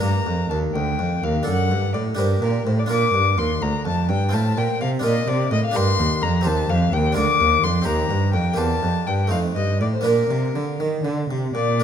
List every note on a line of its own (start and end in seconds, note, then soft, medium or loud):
0.00 0.24 G2 soft
0.00 0.25 G2 soft
0.00 0.23 A#3 soft
0.00 0.24 D4 soft
0.00 1.43 A#4 soft
0.00 0.47 A#5 medium
0.26 0.49 F2 soft
0.26 0.50 F2 soft
0.50 0.74 D#2 soft
0.50 0.73 D#2 soft
0.50 0.58 A5 medium
0.75 1.01 D2 soft
0.75 0.97 D2 soft
0.75 1.25 G5 medium
0.99 1.21 F2 soft
0.99 1.24 F2 soft
1.24 1.45 D#2 soft
1.24 1.47 D#2 soft
1.24 1.47 F5 medium
1.43 2.13 D4 soft
1.43 2.15 A4 soft
1.47 1.69 F#2 soft
1.47 1.73 F#2 medium
1.47 1.93 F#5 medium
1.71 1.93 G2 soft
1.71 1.97 G2 soft
1.94 2.16 A2 soft
1.94 2.18 A2 soft
1.94 2.02 D5 medium
2.15 2.63 D4 soft
2.15 2.87 G4 soft
2.15 2.88 A#4 soft
2.15 2.26 C5 medium
2.19 2.41 G2 soft
2.19 2.42 G2 medium
2.42 2.64 A#2 soft
2.42 2.66 A#2 soft
2.42 2.66 A#4 medium
2.66 2.90 A2 medium
2.66 2.88 A2 soft
2.66 2.71 C5 medium
2.79 2.84 D5 medium
2.86 4.28 D4 soft
2.86 4.28 F4 soft
2.86 4.29 A#4 soft
2.91 3.12 A#2 soft
2.91 3.14 A#2 medium
2.91 3.40 D6 medium
3.14 3.36 G2 soft
3.14 3.40 G2 medium
3.38 3.60 D#2 soft
3.38 3.61 D#2 medium
3.38 3.64 C6 medium
3.62 3.84 D2 soft
3.62 3.70 D2 medium
3.62 3.86 A#5 medium
3.85 4.11 F2 medium
3.85 4.07 F2 soft
3.85 4.10 A5 medium
4.09 4.31 G2 soft
4.09 4.35 G2 medium
4.09 4.36 G5 medium
4.29 5.00 C4 soft
4.29 5.00 F4 soft
4.29 5.02 C5 soft
4.33 4.57 A2 medium
4.33 4.55 A2 soft
4.33 4.60 A5 medium
4.58 4.79 A#2 medium
4.58 4.66 A#2 medium
4.58 4.81 G5 medium
4.81 5.04 C3 medium
4.81 5.03 C3 medium
4.81 4.89 F5 medium
4.99 5.70 D4 soft
4.99 5.72 F4 soft
4.99 5.73 A#4 soft
5.04 5.26 A#2 medium
5.04 5.28 A#2 medium
5.04 5.30 D#5 medium
5.28 5.50 C3 medium
5.28 5.51 C3 medium
5.28 5.52 D5 medium
5.51 5.73 A2 medium
5.51 5.60 A2 medium
5.51 5.64 D#5 medium
5.65 5.78 F5 medium
5.71 6.42 D4 soft
5.71 6.42 G4 soft
5.71 6.43 A#4 soft
5.76 5.97 G2 medium
5.76 5.98 G2 medium
5.76 6.24 C6 loud
5.99 6.21 D#2 medium
5.99 6.08 D#2 medium
6.22 6.44 F2 medium
6.22 6.48 F2 medium
6.22 6.48 A#5 medium
6.41 7.12 C4 soft
6.41 7.13 G4 soft
6.41 7.14 C5 soft
6.45 6.67 D#2 soft
6.45 6.69 D#2 medium
6.45 6.72 A5 medium
6.69 6.91 F2 medium
6.69 6.93 F2 medium
6.69 6.95 F5 medium
6.93 7.14 D#2 medium
6.93 7.17 D#2 medium
6.93 7.16 G5 medium
7.12 7.83 D4 medium
7.12 7.84 F4 medium
7.12 7.84 A#4 soft
7.17 7.38 D2 medium
7.17 7.25 D2 medium
7.17 7.65 D6 loud
7.40 7.63 D#2 medium
7.40 7.62 D#2 medium
7.64 7.85 F2 medium
7.64 7.87 F2 medium
7.64 7.87 C6 medium
7.82 8.54 C4 soft
7.82 8.54 G4 soft
7.82 8.55 C5 soft
7.87 8.08 D#2 medium
7.87 8.10 D#2 medium
7.87 8.34 A#5 medium
8.11 8.32 G2 soft
8.11 8.36 G2 medium
8.34 8.56 F2 medium
8.34 8.58 F2 medium
8.34 8.60 G5 medium
8.54 8.80 A#3 soft
8.54 9.28 G4 soft
8.54 9.28 C5 soft
8.58 8.80 E2 soft
8.58 8.82 E2 medium
8.58 9.08 A5 medium
8.83 9.05 F2 soft
8.83 8.91 F2 medium
9.07 9.33 G2 medium
9.07 9.29 G2 soft
9.07 9.30 G5 medium
9.27 9.53 A3 soft
9.27 10.02 D#4 soft
9.27 10.03 C5 soft
9.27 9.39 F5 medium
9.32 9.55 F2 medium
9.32 9.54 F2 soft
9.56 9.82 G2 soft
9.56 9.78 G2 soft
9.56 9.80 D#5 medium
9.81 10.05 A2 medium
9.81 10.03 A2 soft
9.81 9.86 D5 medium
9.94 10.07 C5 medium
10.01 11.49 A#3 soft
10.01 11.50 D4 soft
10.01 11.50 A#4 soft
10.06 10.30 A#2 soft
10.06 10.28 A#2 soft
10.06 10.80 A#4 medium
10.30 10.55 C3 soft
10.30 10.53 C3 soft
10.55 10.63 D3 soft
10.55 10.78 D3 soft
10.80 11.04 D#3 soft
10.80 11.02 D#3 soft
11.04 11.29 D3 soft
11.04 11.27 D3 soft
11.30 11.54 C3 soft
11.30 11.53 C3 soft
11.55 11.84 A#2 medium
11.55 11.84 D5 medium
11.80 11.84 A#3 soft
11.80 11.84 D4 soft